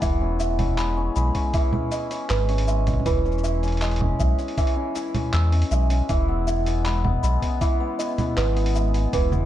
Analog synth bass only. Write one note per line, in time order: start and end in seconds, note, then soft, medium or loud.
0.02 1.10 E1 medium
1.16 1.31 B1 medium
2.30 3.00 G#1 loud
3.06 4.14 E1 loud
4.20 4.35 B1 medium
5.33 5.64 E2 loud
5.71 6.02 B1 loud
6.09 7.17 E1 loud
7.23 7.39 B1 medium
8.37 9.07 G#1 loud
9.13 9.45 E1 medium